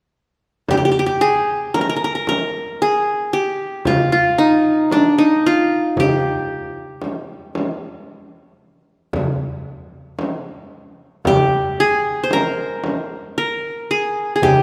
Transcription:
0.69 G4, frame drum, darbuka dum
0.77 G4
0.85 G4
0.92 G4
0.99 G4
1.06 G4
1.21 G#4
1.74 A#4, darbuka tek, frame drum
1.81 A#4
1.90 A#4
1.96 A#4
2.04 A#4
2.15 A#4
2.27 A#4, darbuka tek, frame drum
2.82 G#4
3.33 G4
3.85 F4, frame drum, darbuka dum
4.12 F4
4.38 D#4
4.90 D4, darbuka tek, frame drum
5.18 D#4
5.46 F4
5.96 G4, darbuka dum, frame drum
7.02 darbuka tek, frame drum
7.55 darbuka tek, frame drum
9.13 darbuka dum, frame drum
10.19 darbuka tek, frame drum
11.25 G4, darbuka dum, frame drum
11.80 G#4
12.23 C5
12.31 A#4, darbuka tek, frame drum
12.84 darbuka tek, frame drum
13.38 A#4
13.91 G#4
14.36 G#4
14.42 G4, darbuka dum, frame drum

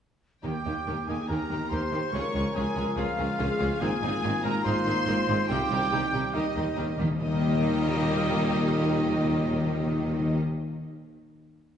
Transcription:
0.43 D#2 D#3 A#3 D#4 G4 G5
0.65 D#2 D#3 A#3 D#4 G4
0.86 D#2 D#3 A#3 D#4 G4
1.07 D#2 D#3 A#3 D#4 G4 G#4 G#5
1.28 D#2 D#3 A#3 D#4 G4 A#4 A#5
1.49 D#2 D#3 A#3 D#4 G4
1.69 D#2 D#3 A#3 D#4 G4 C5 C6
1.91 D#2 D#3 A#3 D#4 G4
2.12 C#2 F3 G#3 C#4 F4 G#4 A#4 C#5 C#6
2.34 C#2 G#3 C#4 F4 G#4
2.53 C#2 G#3 C#4 F4 G#4 G#5
2.76 C#2 G#3 C#4 F4 G#4
2.96 C#2 G#3 C#4 F4 G#4 F5
3.18 C#2 G#3 C#4 F4 G#4
3.39 C#2 G#3 C#4 F4 G#4
3.59 C#2 G#3 C#4 F4 G#4
3.79 G#1 G#2 D#3 A#3 C4 D#4 F4 G#4 G#5
4.02 G#1 G#2 A#3 C4 D#4 G#4
4.23 G#1 G#2 A#3 C4 D#4 G#4
4.42 G#1 G#2 A#3 C4 D#4 G#4 A#4 A#5
4.64 G#1 G#2 A#3 C4 D#4 G#4 C5 C6
4.85 G#1 G#2 A#3 C4 D#4 G#4
5.06 G#1 G#2 A#3 C4 D#4 G#4
5.27 G#1 G#2 A#3 C4 D#4 G#4
5.48 C2 C3 G3 C4 D#4 G4 G5
5.70 C2 C3 G3 C4 D#4 G4
5.91 C2 C3 G3 C4 D#4 G4
6.12 C2 C3 G3 C4 D#4 G4
6.34 D#2 D#3 G3 A#3 D#4 G4 D#5
6.42 D#3
6.51 D#3
6.55 D#2 D#3 G3 A#3 D#4 G4
6.66 D#3
6.74 D#2 D#3 G3 A#3 D#4 G4
6.82 D#3
6.89 D#3
6.96 D#2 D#3 G3 A#3 D#4 G4
7.03 D#3
7.11 D#3
7.19 D#2 A#2 D#3 G3 A#3 D#4 G4 A#4 D#5
7.27 D#3
7.34 D#3
7.40 D#3
7.47 D#3
7.55 D#3
7.61 D#3
7.68 D#3
7.75 D#3
7.81 D#3
7.88 D#3
7.96 D#3
8.02 D#3
8.09 D#3
8.16 D#3
8.23 D#3
8.30 D#3
8.36 D#3
8.43 D#3
8.49 D#3
8.56 D#3
8.63 D#3
8.70 D#3
8.77 D#3
8.84 D#3
8.91 D#3
8.98 D#3
9.04 D#3
9.10 D#3
9.17 D#3
9.24 D#3
9.31 D#3
9.38 D#3
9.46 D#3
9.52 D#3
9.59 D#3
9.66 D#3
9.72 D#3
9.80 D#3
9.86 D#3
9.93 D#3
9.99 D#3
10.06 D#3
10.13 D#3
10.20 D#3
10.27 D#3

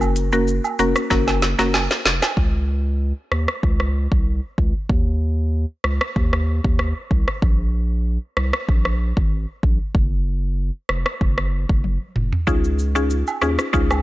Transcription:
Already playing: F#1 A#3 C#4 F#4 A#4
0.01 high woodblock, shaker
0.16 closed hi-hat, cabasa, shaker
0.32 A#3 C#4 F#4 A#4, shaker
0.48 shaker
0.64 high woodblock, shaker
0.79 F1 A#3 C#4 F#4 A#4, closed hi-hat, cabasa, shaker
0.96 cross-stick, shaker
1.10 F#1 A#3 C#4 F#4 A#4, kick, snare, shaker
1.27 snare, high woodblock, shaker
1.42 snare, closed hi-hat, cabasa, shaker
1.59 F#1 A#3 C#4 F#4 A#4, snare, shaker
1.74 snare, high woodblock, shaker
1.91 snare, shaker
2.06 F1, snare, closed hi-hat, cabasa, shaker
2.22 snare, high woodblock, shaker
2.37 C#2, kick
3.32 D#2, cross-stick
3.48 cross-stick
3.63 C#2, kick
3.80 cross-stick
4.12 C2, kick
4.58 C#2, kick
4.90 D#2, kick
5.84 C#2, cross-stick
6.01 cross-stick
6.16 D#2, kick
6.33 cross-stick
6.64 D#2, kick
6.79 cross-stick
7.11 C2, kick
7.28 cross-stick
7.42 A#1, kick
8.37 C2, cross-stick
8.53 cross-stick
8.69 A#1, kick
8.85 cross-stick
9.17 G#1, kick
9.63 A#1, kick
9.95 F#1, kick
10.89 F1, cross-stick
11.06 cross-stick
11.21 F#1, kick
11.38 cross-stick
11.69 F#1, kick
11.84 high tom
12.16 F1, mid tom
12.32 floor tom
12.47 C#2 C#4 D#4 F4 G#4, kick, shaker
12.64 shaker
12.79 cabasa, shaker
12.95 C#4 D#4 F4 G#4, shaker
13.10 shaker
13.27 high woodblock, shaker
13.41 D#2 C#4 D#4 F4 G#4, cross-stick, cabasa, shaker
13.59 cross-stick, shaker
13.73 C#2 C#4 D#4 F4 G#4, kick, shaker
13.90 cross-stick, high woodblock, shaker

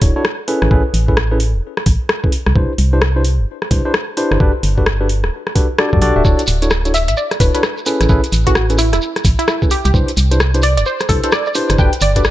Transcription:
0.02 D1 D4 E4 F#4 A4 C#5, kick, open hi-hat
0.16 D4 E4 F#4 A4 C#5
0.25 cross-stick
0.48 C#4 E4 G#4 A4 B4, open hi-hat
0.62 A1, cross-stick
0.71 A1 C#4 E4 G#4 A4 B4, kick
0.94 A1, open hi-hat
1.08 C#4 E4 G#4 A4 B4, kick
1.17 cross-stick
1.31 C#4 E4 G#4 A4 B4
1.40 open hi-hat
1.54 E1
1.77 cross-stick
1.86 A1, kick, open hi-hat
2.09 cross-stick
2.24 C#4 E4 G#4 A4 B4, kick
2.32 open hi-hat
2.46 C2, cross-stick
2.56 C2 D4 E4 G4 B4 C5, kick
2.78 C2, open hi-hat
2.93 D4 E4 G4 B4 C5
3.02 cross-stick
3.16 D4 E4 G4 B4 C5
3.25 open hi-hat
3.39 G1
3.62 cross-stick
3.71 C2 D4 E4 G4 B4 C5, kick, open hi-hat
3.85 D4 E4 G4 B4 C5
3.94 cross-stick
4.17 D4 E4 G4 B4 C5, open hi-hat
4.31 G1, cross-stick
4.40 G1 D4 F#4 G4 A4 B4, kick
4.63 G1, open hi-hat
4.78 D4 F#4 G4 A4 B4, kick
4.86 cross-stick
5.01 D4 F#4 G4 A4 B4
5.09 open hi-hat
5.24 D1, cross-stick
5.47 cross-stick
5.55 D4 F#4 G4 A4 B4, kick, open hi-hat
5.79 D4 F#4 G4 A4 D5, cross-stick
5.93 G2 D4 F#4 G4 A4 D5, kick
6.02 B1 D4 F#4 G4 A4 D5, open hi-hat
6.16 D1 D4 F#4 G4 A4 E5
6.25 D1 D4 E4 F#4 A4 C#5, kick, shekere
6.39 closed hi-hat, shekere
6.47 D1, open hi-hat, shekere
6.62 D4 E4 F#4 A4 C#5, closed hi-hat, shekere
6.70 cross-stick, shekere
6.85 D4 E4 F#4 A4 C#5, closed hi-hat, shekere
6.94 E5, open hi-hat, shekere
7.08 A1 E5, closed hi-hat, shekere
7.17 D5, shekere
7.31 cross-stick, closed hi-hat, shekere
7.40 D1 D4 E4 F#4 A4 B4 C#5, kick, open hi-hat, shekere
7.54 D4 E4 F#4 A4 B4 C#5, closed hi-hat, shekere
7.63 cross-stick, shekere
7.77 shekere
7.86 C#4 E4 G#4 A4 B4, open hi-hat, shekere
8.01 A1, cross-stick, closed hi-hat, shekere
8.09 A1 C#4 E4 G#4 A4 B4, kick, shekere
8.24 closed hi-hat, shekere
8.32 A1, open hi-hat, shekere
8.47 C#4 E4 F#4 G#4 A4 B4, kick, closed hi-hat, shekere
8.55 cross-stick, shekere
8.70 C#4 E4 G#4 A4 B4, closed hi-hat, shekere
8.78 E4, open hi-hat, shekere
8.93 E1 E4, cross-stick, closed hi-hat, shekere
9.02 shekere
9.16 cross-stick, closed hi-hat, shekere
9.25 A1, kick, open hi-hat, shekere
9.39 E4, closed hi-hat, shekere
9.48 E4, cross-stick, shekere
9.62 C#4 E4 G#4 A4 B4, kick, shekere
9.71 G4, open hi-hat, shekere
9.85 C2 G4, closed hi-hat, shekere
9.94 C2 D4 E4 G4 B4 C5, kick, shekere
10.08 closed hi-hat, shekere
10.17 C2, open hi-hat, shekere
10.31 D4 E4 G4 B4 C5, closed hi-hat, shekere
10.40 cross-stick, shekere
10.54 D4 E4 G4 B4 C5, closed hi-hat, shekere
10.62 D5, open hi-hat, shekere
10.77 G1 D5, closed hi-hat, shekere
10.86 C5, shekere
11.00 cross-stick, closed hi-hat, shekere
11.09 C2 D4 E4 G4 A4 B4 C5, kick, open hi-hat, shekere
11.23 D4 E4 G4 A4 B4 C5, closed hi-hat, shekere
11.32 D5, cross-stick, shekere
11.46 D5, shekere
11.54 D4 E4 G4 B4 C5, open hi-hat, shekere
11.69 G1, cross-stick, closed hi-hat, shekere
11.78 G1 D4 F#4 G4 A4 B4 G5, kick, shekere
11.93 closed hi-hat, shekere
12.01 G1 D5, open hi-hat, shekere
12.16 D4 F#4 G4 A4 B4 D5, kick, closed hi-hat, shekere
12.24 cross-stick, shekere

